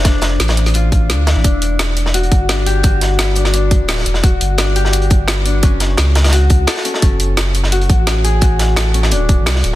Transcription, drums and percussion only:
0.05 kick loud
0.05 snare loud
0.05 closed hi-hat medium
0.21 snare medium
0.21 closed hi-hat medium
0.40 snare loud
0.40 closed hi-hat medium
0.48 snare loud
0.48 closed hi-hat medium
0.57 closed hi-hat medium
0.66 snare soft
0.66 closed hi-hat medium
0.74 closed hi-hat medium
0.92 kick loud
0.92 closed hi-hat medium
1.10 snare loud
1.10 closed hi-hat medium
1.27 snare loud
1.27 closed hi-hat medium
1.44 kick loud
1.44 closed hi-hat medium
1.44 closed hi-hat loud
1.62 closed hi-hat medium
1.79 snare loud
1.79 closed hi-hat medium
1.97 closed hi-hat medium
2.06 snare soft
2.14 closed hi-hat medium
2.23 closed hi-hat soft
2.32 kick loud
2.32 closed hi-hat medium
2.49 snare loud
2.49 closed hi-hat medium
2.66 closed hi-hat medium
2.83 kick loud
2.83 closed hi-hat medium
3.01 snare soft
3.01 closed hi-hat medium
3.19 snare loud
3.19 closed hi-hat medium
3.35 closed hi-hat medium
3.45 snare soft
3.54 closed hi-hat medium
3.71 kick loud
3.71 closed hi-hat medium
3.88 snare loud
3.88 closed hi-hat medium
3.88 open hi-hat medium
3.98 snare medium
4.06 closed hi-hat medium
4.14 snare soft
4.24 kick loud
4.24 closed hi-hat medium
4.41 closed hi-hat medium
4.58 snare loud
4.58 closed hi-hat medium
4.76 closed hi-hat medium
4.85 snare soft
4.93 closed hi-hat medium
5.02 closed hi-hat soft
5.10 kick loud
5.10 closed hi-hat medium
5.28 snare loud
5.28 closed hi-hat medium
5.46 closed hi-hat medium
5.63 kick loud
5.63 closed hi-hat medium
5.80 snare soft
5.80 closed hi-hat medium
5.97 snare loud
5.97 closed hi-hat medium
6.15 snare loud
6.15 closed hi-hat medium
6.24 snare soft
6.24 snare medium
6.24 closed hi-hat medium
6.28 snare medium
6.28 closed hi-hat medium
6.33 closed hi-hat medium
6.50 kick loud
6.50 closed hi-hat medium
6.67 snare loud
6.67 closed hi-hat medium
6.67 open hi-hat medium
6.77 snare medium
6.85 closed hi-hat medium
6.94 snare medium
7.02 kick loud
7.02 closed hi-hat medium
7.20 closed hi-hat medium
7.37 snare loud
7.37 closed hi-hat medium
7.55 closed hi-hat medium
7.64 snare soft
7.72 closed hi-hat medium
7.81 closed hi-hat soft
7.89 kick loud
7.89 closed hi-hat medium
8.07 snare loud
8.07 closed hi-hat medium
8.24 closed hi-hat medium
8.41 kick loud
8.41 closed hi-hat medium
8.59 snare medium
8.59 closed hi-hat medium
8.76 snare loud
8.76 closed hi-hat medium
8.94 closed hi-hat medium
9.03 snare soft
9.11 closed hi-hat medium
9.29 kick loud
9.29 closed hi-hat medium
9.46 snare loud
9.46 closed hi-hat medium
9.46 open hi-hat medium
9.55 snare medium
9.64 closed hi-hat medium

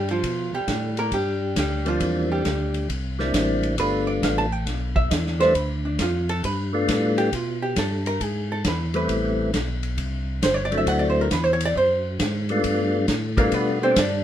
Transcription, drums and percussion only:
0.08 ride soft
0.24 kick soft
0.24 ride medium
0.68 kick soft
0.68 snare medium
0.68 hi-hat pedal medium
0.68 ride medium
0.97 ride soft
1.12 kick soft
1.12 ride medium
1.56 kick soft
1.56 snare medium
1.56 hi-hat pedal medium
1.56 ride medium
1.86 ride soft
2.00 kick soft
2.00 ride medium
2.45 kick soft
2.45 snare medium
2.45 hi-hat pedal soft
2.45 ride medium
2.74 ride soft
2.89 kick soft
2.89 ride medium
3.19 snare soft
3.34 kick soft
3.34 snare medium
3.34 hi-hat pedal medium
3.34 ride medium
3.63 ride soft
3.78 kick soft
3.78 ride medium
4.22 kick soft
4.22 snare medium
4.22 hi-hat pedal medium
4.22 ride medium
4.67 kick soft
4.67 snare soft
4.67 ride medium
4.96 kick medium
5.11 kick soft
5.11 snare medium
5.11 hi-hat pedal medium
5.11 ride medium
5.27 snare soft
5.40 snare soft
5.40 ride soft
5.55 kick soft
5.55 ride medium
5.99 kick soft
5.99 snare medium
5.99 hi-hat pedal medium
5.99 ride medium
6.29 ride soft
6.44 kick soft
6.44 ride medium
6.88 kick soft
6.88 snare medium
6.88 hi-hat pedal medium
6.88 ride medium
7.18 ride soft
7.33 kick soft
7.33 ride medium
7.76 kick soft
7.76 snare medium
7.76 hi-hat pedal soft
7.76 ride medium
8.06 ride soft
8.21 kick soft
8.21 ride medium
8.65 kick soft
8.65 snare medium
8.65 hi-hat pedal medium
8.65 ride medium
8.94 ride soft
9.09 kick soft
9.09 ride medium
9.53 kick soft
9.53 snare medium
9.53 hi-hat pedal soft
9.53 ride medium
9.83 ride soft
9.98 kick soft
9.98 ride medium
10.42 kick soft
10.42 snare medium
10.42 hi-hat pedal medium
10.42 ride medium
10.72 ride soft
10.87 kick soft
10.87 ride medium
11.31 kick soft
11.31 snare medium
11.31 hi-hat pedal medium
11.31 ride medium
11.61 ride medium
11.75 kick soft
12.20 kick soft
12.20 snare medium
12.20 hi-hat pedal medium
12.20 ride medium
12.49 ride soft
12.64 kick soft
12.64 ride medium
13.08 kick soft
13.08 snare medium
13.08 hi-hat pedal medium
13.08 ride medium
13.37 kick medium
13.37 ride soft
13.52 kick soft
13.52 ride medium
13.96 kick soft
13.96 snare medium
13.96 hi-hat pedal medium
13.96 ride medium

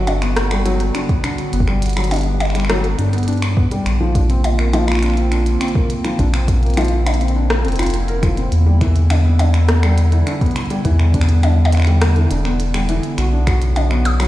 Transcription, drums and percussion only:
0.07 closed hi-hat medium
0.07 percussion blips medium
0.22 finger snap medium
0.22 closed hi-hat medium
0.36 cross-stick loud
0.36 closed hi-hat medium
0.51 finger snap medium
0.51 closed hi-hat soft
0.66 closed hi-hat medium
0.80 closed hi-hat medium
0.95 finger snap medium
0.95 closed hi-hat medium
1.09 kick loud
1.09 closed hi-hat soft
1.24 finger snap medium
1.24 closed hi-hat medium
1.38 closed hi-hat medium
1.53 closed hi-hat medium
1.60 kick medium
1.68 finger snap medium
1.82 closed hi-hat medium
1.86 closed hi-hat medium
1.89 closed hi-hat medium
1.93 finger snap medium
1.93 closed hi-hat soft
1.97 closed hi-hat soft
2.00 closed hi-hat soft
2.04 closed hi-hat medium
2.08 closed hi-hat soft
2.11 closed hi-hat medium
2.11 percussion blips medium
2.14 closed hi-hat medium
2.16 closed hi-hat medium
2.19 closed hi-hat soft
2.21 closed hi-hat soft
2.23 closed hi-hat soft
2.40 finger snap soft
2.40 closed hi-hat medium
2.40 percussion blips medium
2.45 finger snap soft
2.50 finger snap soft
2.55 finger snap soft
2.55 closed hi-hat medium
2.60 finger snap soft
2.65 finger snap soft
2.70 finger snap medium
2.70 cross-stick loud
2.70 closed hi-hat medium
2.84 closed hi-hat soft
2.99 closed hi-hat medium
3.13 closed hi-hat medium
3.18 closed hi-hat soft
3.23 closed hi-hat soft
3.28 closed hi-hat medium
3.33 closed hi-hat soft
3.38 closed hi-hat soft
3.42 finger snap medium
3.42 closed hi-hat soft
3.57 kick loud
3.71 closed hi-hat medium
3.86 finger snap medium
3.86 closed hi-hat medium
4.15 kick loud
4.15 closed hi-hat medium
4.30 closed hi-hat medium
4.44 closed hi-hat medium
4.44 percussion blips medium
4.59 finger snap medium
4.73 closed hi-hat medium
4.73 percussion blips medium
4.88 finger snap medium
4.92 finger snap medium
4.95 finger snap soft
4.99 finger snap soft
5.03 finger snap soft
5.03 closed hi-hat medium
5.06 finger snap soft
5.10 finger snap soft
5.14 finger snap soft
5.14 closed hi-hat soft
5.32 finger snap medium
5.32 closed hi-hat medium
5.46 closed hi-hat medium
5.61 finger snap medium
5.61 closed hi-hat medium
5.68 closed hi-hat soft
5.75 kick loud
5.90 closed hi-hat medium
6.05 finger snap medium
6.05 closed hi-hat medium
6.19 kick medium
6.19 closed hi-hat medium
6.34 finger snap medium
6.48 kick loud
6.48 closed hi-hat medium
6.63 closed hi-hat soft
6.67 closed hi-hat soft
6.70 closed hi-hat soft
6.74 finger snap medium
6.74 closed hi-hat soft
6.77 closed hi-hat medium
6.77 percussion blips medium
6.81 closed hi-hat soft
6.85 closed hi-hat soft
6.88 closed hi-hat soft
7.07 finger snap medium
7.07 closed hi-hat medium
7.07 percussion blips medium
7.14 closed hi-hat medium
7.21 closed hi-hat medium
7.28 closed hi-hat soft
7.50 finger snap soft
7.50 cross-stick loud
7.50 closed hi-hat soft
7.65 closed hi-hat soft
7.68 closed hi-hat soft
7.72 closed hi-hat soft
7.76 finger snap medium
7.76 closed hi-hat medium
7.79 closed hi-hat medium
7.83 closed hi-hat medium
7.86 closed hi-hat medium
7.90 closed hi-hat medium
7.94 closed hi-hat medium
8.08 closed hi-hat soft
8.23 finger snap soft
8.23 kick loud
8.23 closed hi-hat medium
8.37 closed hi-hat medium
8.52 closed hi-hat medium
8.81 finger snap medium
8.81 kick loud
8.81 closed hi-hat medium
8.96 closed hi-hat soft
9.10 finger snap medium
9.10 closed hi-hat medium
9.10 percussion blips medium
9.39 closed hi-hat medium
9.39 percussion blips medium
9.54 finger snap medium
9.54 closed hi-hat medium
9.69 cross-stick loud
9.69 closed hi-hat medium
9.83 finger snap medium
9.83 closed hi-hat soft
9.98 closed hi-hat medium
10.12 closed hi-hat soft
10.27 finger snap soft
10.27 closed hi-hat medium
10.41 kick loud
10.41 closed hi-hat soft
10.46 closed hi-hat soft
10.51 closed hi-hat soft
10.56 finger snap medium
10.56 closed hi-hat medium
10.61 closed hi-hat soft
10.66 closed hi-hat soft
10.70 closed hi-hat soft
10.85 kick medium
10.85 closed hi-hat medium
10.99 finger snap medium
11.14 kick loud
11.14 closed hi-hat medium
11.21 finger snap medium
11.29 closed hi-hat medium
11.43 closed hi-hat medium
11.43 percussion blips medium
11.65 percussion blips loud
11.72 finger snap soft
11.72 closed hi-hat medium
11.75 finger snap soft
11.77 finger snap soft
11.80 finger snap soft
11.82 finger snap soft
11.85 finger snap soft
11.85 closed hi-hat soft
12.02 finger snap medium
12.02 cross-stick loud
12.02 closed hi-hat medium
12.16 closed hi-hat soft
12.31 closed hi-hat medium
12.45 finger snap medium
12.60 closed hi-hat medium
12.74 finger snap medium
12.74 closed hi-hat soft
12.89 closed hi-hat medium
13.03 closed hi-hat medium
13.18 finger snap medium
13.18 closed hi-hat medium
13.47 finger snap medium
13.47 kick loud
13.47 closed hi-hat medium
13.62 closed hi-hat medium
13.76 closed hi-hat medium
13.76 percussion blips medium
13.91 finger snap medium
14.05 closed hi-hat medium
14.05 percussion blips loud
14.20 finger snap medium
14.20 closed hi-hat soft
14.22 closed hi-hat soft
14.25 closed hi-hat soft

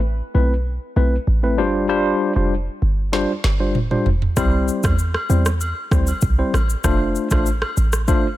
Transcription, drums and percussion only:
3.13 snare medium
3.44 snare medium
3.75 mid tom medium
3.91 mid tom medium
4.06 floor tom loud
4.22 floor tom medium
4.37 kick loud
4.37 cross-stick medium
4.37 high agogo medium
4.37 shaker medium
4.68 shaker soft
4.83 kick medium
4.83 cross-stick loud
4.83 high agogo medium
4.83 shaker medium
4.99 shaker medium
5.14 cross-stick medium
5.14 high agogo medium
5.30 shaker medium
5.46 cross-stick medium
5.46 shaker medium
5.61 high agogo medium
5.61 shaker medium
5.91 kick medium
5.91 cross-stick loud
5.91 shaker medium
6.07 high agogo medium
6.07 shaker medium
6.21 kick loud
6.21 shaker medium
6.54 cross-stick loud
6.54 high agogo medium
6.54 shaker soft
6.70 shaker medium
6.84 kick loud
6.84 cross-stick medium
6.84 high agogo medium
6.84 shaker medium
7.15 shaker soft
7.31 kick medium
7.31 cross-stick loud
7.31 high agogo medium
7.31 shaker medium
7.46 shaker medium
7.62 cross-stick medium
7.62 high agogo medium
7.77 shaker medium
7.93 cross-stick medium
7.93 shaker medium
8.08 kick loud
8.08 high agogo medium
8.08 shaker medium

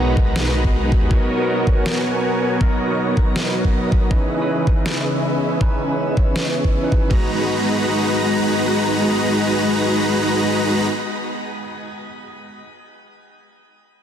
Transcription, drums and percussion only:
0.17 kick medium
0.36 snare loud
0.64 kick medium
0.92 kick loud
1.11 kick loud
1.67 kick medium
1.86 snare loud
2.61 kick loud
3.17 kick medium
3.36 snare loud
3.65 kick medium
3.92 kick medium
4.11 kick loud
4.67 kick medium
4.86 snare loud
5.61 kick loud
6.17 kick medium
6.36 snare loud
6.64 kick medium
6.92 kick medium
7.11 kick loud

